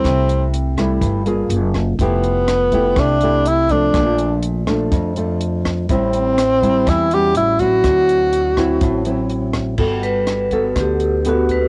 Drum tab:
CC |--------|--------|--------|--------|
HH |xxxxxxxx|xxxxxxxx|xxxxxxxx|xxxxxxxx|
SD |r--r---r|--r-r---|r--r---r|--r-r---|
BD |o--oo--o|o--oo--o|o--oo--o|o--oo--o|

CC |--------|x-------|
HH |xxxxxxxx|-xxxxxxx|
SD |r--r---r|--r-r---|
BD |o--oo--o|o--oo--o|